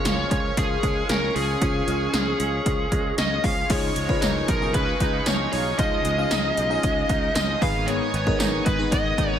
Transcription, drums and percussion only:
0.05 snare, closed hi-hat
0.31 kick, closed hi-hat
0.57 kick, closed hi-hat
0.83 kick, closed hi-hat
1.09 snare, closed hi-hat
1.36 open hi-hat
1.62 kick, closed hi-hat
1.88 closed hi-hat
2.14 snare, closed hi-hat
2.40 closed hi-hat
2.66 kick, closed hi-hat
2.92 kick, closed hi-hat
3.18 snare, closed hi-hat
3.44 kick, open hi-hat
3.70 kick, closed hi-hat, crash
3.96 closed hi-hat
4.09 kick
4.22 snare, closed hi-hat, tambourine
4.48 kick, closed hi-hat
4.74 kick, closed hi-hat
5.00 kick, closed hi-hat
5.26 snare, closed hi-hat, tambourine
5.53 open hi-hat
5.79 kick, closed hi-hat
6.05 closed hi-hat
6.31 snare, closed hi-hat, tambourine
6.57 closed hi-hat
6.83 kick, closed hi-hat
7.09 kick, closed hi-hat
7.35 snare, closed hi-hat, tambourine
7.62 kick, open hi-hat
7.88 closed hi-hat
8.14 closed hi-hat
8.27 kick
8.40 snare, closed hi-hat, tambourine
8.66 kick, closed hi-hat
8.92 kick, closed hi-hat
9.18 kick, closed hi-hat

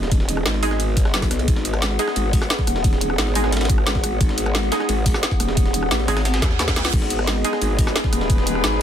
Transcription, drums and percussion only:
0.03 snare
0.12 kick, closed hi-hat, ride
0.20 snare
0.29 closed hi-hat, ride
0.37 cross-stick
0.46 snare, closed hi-hat, ride
0.54 snare
0.63 open hi-hat, ride
0.71 cross-stick, snare
0.80 closed hi-hat, ride
0.97 kick, closed hi-hat, ride
1.05 cross-stick, snare
1.14 snare, closed hi-hat, ride
1.22 kick, snare, ride
1.31 cross-stick, snare, closed hi-hat
1.39 ride
1.48 kick, closed hi-hat, ride
1.56 snare
1.65 closed hi-hat, ride
1.73 cross-stick, ride
1.82 snare, closed hi-hat, ride
1.91 snare
1.99 closed hi-hat, ride
2.08 cross-stick, snare
2.16 closed hi-hat, ride
2.33 kick, closed hi-hat, open hi-hat
2.42 cross-stick, snare
2.50 snare, closed hi-hat, ride
2.59 kick, snare
2.67 cross-stick, closed hi-hat, ride
2.76 snare
2.84 kick, closed hi-hat, ride
2.93 snare
3.01 closed hi-hat, ride
3.10 cross-stick
3.18 snare, closed hi-hat, ride
3.27 snare
3.35 open hi-hat, ride
3.44 cross-stick, snare
3.52 snare, closed hi-hat, ride
3.57 snare, ride
3.61 snare, ride
3.65 snare, ride
3.69 kick, closed hi-hat, ride
3.78 cross-stick
3.87 snare, closed hi-hat, ride
3.95 kick, snare
4.04 cross-stick, closed hi-hat, ride
4.21 kick, closed hi-hat, ride
4.29 snare
4.38 closed hi-hat, ride
4.46 cross-stick, ride
4.55 snare, closed hi-hat, ride
4.63 snare
4.72 snare, closed hi-hat, ride
4.80 cross-stick, snare
4.89 closed hi-hat, ride
5.06 kick, closed hi-hat, open hi-hat
5.14 cross-stick, snare
5.23 snare, closed hi-hat, ride
5.31 kick, snare
5.40 cross-stick, closed hi-hat, ride
5.49 snare
5.57 kick, closed hi-hat, ride
5.66 snare
5.74 closed hi-hat, ride
5.83 cross-stick
5.91 snare, closed hi-hat, ride
6.00 snare
6.08 open hi-hat, ride
6.17 cross-stick, snare, ride
6.25 snare, closed hi-hat, ride
6.34 snare, ride
6.42 kick, snare, closed hi-hat, ride
6.51 snare
6.59 snare, closed hi-hat, ride
6.68 kick, snare, ride
6.76 snare, closed hi-hat
6.85 snare, ride
6.93 kick, closed hi-hat, crash, ride
7.02 snare
7.10 closed hi-hat, ride
7.19 cross-stick, ride
7.27 snare, closed hi-hat, ride
7.36 snare
7.44 closed hi-hat, ride
7.53 cross-stick, snare
7.62 closed hi-hat, ride
7.79 kick, closed hi-hat, open hi-hat
7.87 cross-stick, snare
7.96 snare, closed hi-hat, ride
8.04 kick, snare
8.13 cross-stick, closed hi-hat, ride
8.21 snare
8.30 kick, closed hi-hat, ride
8.38 snare
8.47 closed hi-hat, ride
8.55 cross-stick
8.64 snare, closed hi-hat, ride
8.72 snare

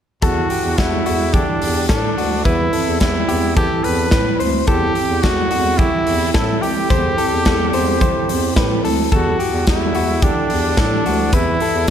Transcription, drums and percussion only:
0.22 kick, closed hi-hat
0.50 open hi-hat
0.78 kick, snare, closed hi-hat
1.06 open hi-hat
1.34 kick, closed hi-hat
1.62 open hi-hat
1.89 kick, snare, closed hi-hat
2.18 open hi-hat
2.45 kick, closed hi-hat
2.73 open hi-hat
3.00 kick, snare, closed hi-hat
3.29 open hi-hat
3.57 kick, closed hi-hat
3.84 open hi-hat
4.11 kick, snare, closed hi-hat
4.40 open hi-hat
4.67 kick, closed hi-hat
4.95 open hi-hat
5.23 kick, snare, closed hi-hat
5.51 open hi-hat
5.79 kick, closed hi-hat
6.07 open hi-hat
6.34 kick, snare
6.63 open hi-hat
6.90 kick, closed hi-hat
7.18 open hi-hat
7.45 kick, snare, closed hi-hat
7.73 open hi-hat
8.01 kick, closed hi-hat
8.29 open hi-hat
8.56 kick, snare, closed hi-hat
8.85 open hi-hat
9.12 kick, closed hi-hat
9.40 open hi-hat
9.67 kick, snare, closed hi-hat
9.95 open hi-hat
10.22 kick, closed hi-hat
10.50 open hi-hat
10.77 kick, snare, closed hi-hat
11.06 open hi-hat
11.33 kick, closed hi-hat
11.60 open hi-hat

